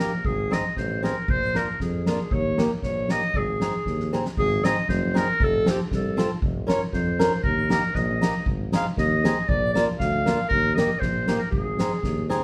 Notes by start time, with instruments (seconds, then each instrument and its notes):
Already playing: clarinet A#4
0.00 tuba A#1, steel-string acoustic guitar A#3 D#4 G4
0.25 tuba G#1, clarinet G#4, kick
0.51 steel-string acoustic guitar C4 D#4 G#4, clarinet D#5, snare
0.77 tuba A1, clarinet C5, kick, snare
1.03 steel-string acoustic guitar C4 D#4 G#4, clarinet A#4, snare
1.28 tuba A#1, clarinet C5, kick
1.42 snare
1.54 steel-string acoustic guitar A#3 D4 F4, clarinet A#4, snare
1.80 tuba F2, clarinet G#4, kick, snare
2.06 steel-string acoustic guitar A#3 D4 F4, snare
2.31 tuba D#2, clarinet C#5, kick
2.58 steel-string acoustic guitar A#3 D#4 G4, snare
2.83 tuba A#1, clarinet C#5, kick, snare
3.09 steel-string acoustic guitar A#3 D#4 G4, clarinet D#5, snare
3.34 tuba G#1, clarinet G#4, kick
3.60 steel-string acoustic guitar C4 D#4 G#4, snare
3.86 tuba D#2, kick, snare
4.00 snare
4.13 steel-string acoustic guitar C4 D#4 G#4, snare
4.25 snare
4.37 tuba G#1, clarinet G#4, kick
4.64 steel-string acoustic guitar C4 D#4 G#4, clarinet D#5, snare, hi-hat pedal
4.89 tuba F#1, clarinet C5, kick, snare
5.14 steel-string acoustic guitar C4 D#4 G#4, clarinet A#4, snare, hi-hat pedal
5.40 tuba F1, clarinet A4, kick
5.66 steel-string acoustic guitar C4 F4 A4, snare, hi-hat pedal
5.70 clarinet G4
5.91 tuba C2, clarinet A4, kick, snare
6.17 steel-string acoustic guitar C4 F4 A4, snare, hi-hat pedal
6.42 tuba F1, kick
6.67 steel-string acoustic guitar C#4 F4 A#4, clarinet C#5, snare, hi-hat pedal
6.93 tuba F2, clarinet C5, kick, snare
7.19 steel-string acoustic guitar C#4 F4 A#4, snare, hi-hat pedal
7.43 tuba D#2, clarinet A#4, kick
7.69 steel-string acoustic guitar A#3 D#4 G4, clarinet A#4, snare, hi-hat pedal
7.95 tuba A#1, clarinet D#5, kick, snare
8.21 steel-string acoustic guitar A#3 D#4 G4, snare, hi-hat pedal
8.46 tuba G#1, kick
8.72 steel-string acoustic guitar C4 D#4 G#4, clarinet F5, snare, hi-hat pedal
8.97 tuba D#2, clarinet D#5, kick, snare
9.24 steel-string acoustic guitar C4 D#4 G#4, snare, hi-hat pedal
9.48 tuba A#1, clarinet D5, kick
9.73 steel-string acoustic guitar A#3 D4 F4, clarinet D5, snare, hi-hat pedal
9.99 tuba D2, clarinet F5, kick, snare
10.26 steel-string acoustic guitar A#3 D4 F4, snare, hi-hat pedal
10.49 tuba D#2, clarinet A#4, kick
10.75 steel-string acoustic guitar A#3 D#4, clarinet D#5, snare, hi-hat pedal
10.79 steel-string acoustic guitar G4
10.99 tuba A#1, clarinet C5, kick, snare
11.27 steel-string acoustic guitar A#3 D#4 G4, snare, hi-hat pedal
11.37 clarinet A#4 C5
11.51 tuba G#1, clarinet G#4, kick
11.78 steel-string acoustic guitar C4 D#4 G#4, snare, hi-hat pedal
12.03 tuba D#2, kick, snare
12.29 steel-string acoustic guitar C4 D#4 G#4, snare, hi-hat pedal